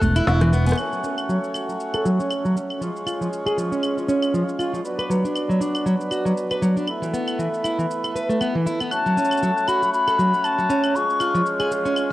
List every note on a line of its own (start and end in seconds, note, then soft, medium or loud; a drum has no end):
0.01 0.19 E1 medium
0.01 0.14 A3 medium
0.01 0.15 F#6 medium
0.01 kick medium
0.01 shaker medium
0.16 0.26 E4 loud
0.16 closed hi-hat medium
0.16 claves medium
0.16 shaker soft
0.27 0.72 E1 medium
0.27 0.40 E4 loud
0.27 0.41 C#6 medium
0.27 cross-stick medium
0.27 snare loud
0.27 shaker soft
0.41 0.52 E3 loud
0.41 0.52 F#6 medium
0.41 cross-stick medium
0.41 closed hi-hat soft
0.41 shaker soft
0.53 0.65 B3 loud
0.53 shaker medium
0.66 0.77 B3 medium
0.66 0.73 G#5 medium
0.66 closed hi-hat soft
0.66 shaker soft
0.69 closed hi-hat soft
0.71 cross-stick medium
0.71 closed hi-hat soft
0.73 closed hi-hat soft
0.75 2.79 A3 medium
0.75 4.81 C#4 medium
0.75 2.79 F#4 medium
0.75 4.81 C#5 medium
0.75 closed hi-hat soft
0.75 claves medium
0.75 shaker soft
0.92 1.02 F#3 medium
0.92 shaker soft
1.04 1.28 C#4 medium
1.04 shaker medium
1.18 claves medium
1.18 shaker soft
1.29 1.37 F#3 medium
1.29 shaker soft
1.44 shaker soft
1.54 1.67 F#4 medium
1.54 claves medium
1.54 shaker medium
1.69 1.75 F#3 medium
1.69 shaker soft
1.80 shaker soft
1.94 2.05 A4 medium
1.94 claves medium
1.94 shaker soft
2.05 2.18 F#3 medium
2.05 shaker medium
2.20 2.44 C#4 medium
2.20 shaker soft
2.31 claves medium
2.31 shaker soft
2.45 2.55 F#3 medium
2.45 shaker soft
2.56 2.80 C#4 medium
2.56 shaker medium
2.70 claves medium
2.70 shaker soft
2.81 2.89 F3 medium
2.81 4.83 G#3 medium
2.81 4.83 F4 medium
2.81 shaker soft
2.96 shaker soft
3.07 3.19 F4 medium
3.07 claves medium
3.07 shaker medium
3.21 3.27 F3 medium
3.21 shaker soft
3.33 shaker soft
3.46 3.57 G#4 medium
3.46 claves medium
3.46 shaker soft
3.58 3.70 F3 medium
3.58 shaker medium
3.72 3.96 C#4 medium
3.72 shaker soft
3.83 claves medium
3.83 shaker soft
3.97 4.07 F3 medium
3.97 shaker soft
4.08 4.33 C#4 medium
4.08 shaker medium
4.22 claves medium
4.22 shaker soft
4.34 4.42 F3 medium
4.34 shaker soft
4.49 shaker soft
4.59 4.72 F4 medium
4.59 claves medium
4.59 shaker medium
4.73 4.80 F3 medium
4.73 shaker soft
4.85 6.86 F#3 medium
4.85 8.87 B3 medium
4.85 6.86 D4 medium
4.85 6.86 B4 medium
4.85 shaker soft
4.99 5.09 B4 medium
4.99 claves medium
4.99 shaker soft
5.10 5.23 F#3 medium
5.10 shaker medium
5.24 5.48 D4 medium
5.24 shaker soft
5.36 claves medium
5.36 shaker soft
5.49 5.60 F#3 medium
5.49 shaker soft
5.61 5.85 D4 medium
5.61 shaker medium
5.75 claves medium
5.75 shaker soft
5.86 5.94 F#3 medium
5.86 shaker soft
6.01 shaker soft
6.11 6.24 F#4 medium
6.11 claves medium
6.11 shaker medium
6.25 6.32 F#3 medium
6.25 shaker soft
6.38 shaker soft
6.51 6.62 B4 medium
6.51 claves medium
6.51 shaker soft
6.62 6.75 F#3 medium
6.62 shaker medium
6.77 6.88 D4 medium
6.77 shaker soft
6.88 8.90 A3 medium
6.88 8.90 E4 medium
6.88 8.90 B4 medium
6.88 claves medium
7.02 7.12 E3 medium
7.02 shaker soft
7.13 7.38 B3 medium
7.13 shaker medium
7.28 claves medium
7.28 shaker soft
7.39 7.47 E3 medium
7.39 shaker soft
7.54 shaker soft
7.64 7.77 E4 medium
7.64 claves medium
7.64 shaker medium
7.79 7.85 E3 medium
7.79 shaker soft
7.91 shaker soft
8.04 8.15 A4 medium
8.04 claves medium
8.04 shaker soft
8.15 8.28 B4 medium
8.15 shaker medium
8.29 8.39 A3 medium
8.29 shaker soft
8.41 8.54 B3 medium
8.41 claves medium
8.41 shaker soft
8.55 8.65 E3 medium
8.66 8.79 E4 medium
8.66 shaker medium
8.80 8.91 B3 medium
8.80 claves medium
8.80 shaker soft
8.91 10.93 A3 medium
8.91 12.13 C#4 soft
8.91 10.93 F#4 medium
8.91 12.13 C#5 medium
8.91 9.70 A5 medium
8.91 9.05 F#6 medium
8.91 claves medium
8.91 shaker soft
9.06 9.16 F#3 medium
9.06 shaker soft
9.17 9.41 C#4 medium
9.17 shaker medium
9.25 shaker soft
9.31 9.42 F#6 medium
9.31 claves medium
9.31 shaker soft
9.37 shaker soft
9.43 9.51 F#3 medium
9.43 shaker soft
9.56 9.67 F#6 medium
9.56 shaker soft
9.68 9.81 F#4 medium
9.68 9.93 B5 medium
9.68 claves medium
9.68 shaker medium
9.82 9.88 F#3 medium
9.82 shaker soft
9.93 10.46 B5 medium
9.93 10.07 F#6 medium
9.93 shaker soft
10.08 10.18 A4 medium
10.08 claves medium
10.08 shaker soft
10.18 10.32 F#3 medium
10.18 10.32 F#6 medium
10.18 shaker medium
10.33 10.57 C#4 medium
10.33 shaker soft
10.44 10.97 A5 medium
10.44 claves medium
10.44 shaker soft
10.58 10.68 F#3 medium
10.58 10.69 F#6 medium
10.58 shaker soft
10.70 10.94 C#4 medium
10.70 shaker medium
10.83 10.94 F#6 medium
10.83 claves medium
10.83 shaker soft
10.95 11.03 F3 medium
10.95 12.13 G#3 medium
10.95 12.13 F4 medium
10.95 11.46 C#6 medium
10.95 shaker soft
11.10 shaker soft
11.20 11.33 F4 medium
11.20 11.34 F6 medium
11.20 claves medium
11.20 shaker medium
11.35 11.41 F3 medium
11.35 shaker soft
11.45 11.59 F6 medium
11.45 shaker soft
11.60 11.71 G#4 medium
11.60 claves medium
11.60 shaker soft
11.71 11.84 F3 medium
11.71 shaker medium
11.85 12.09 C#4 medium
11.85 shaker soft
11.96 claves medium
11.96 shaker soft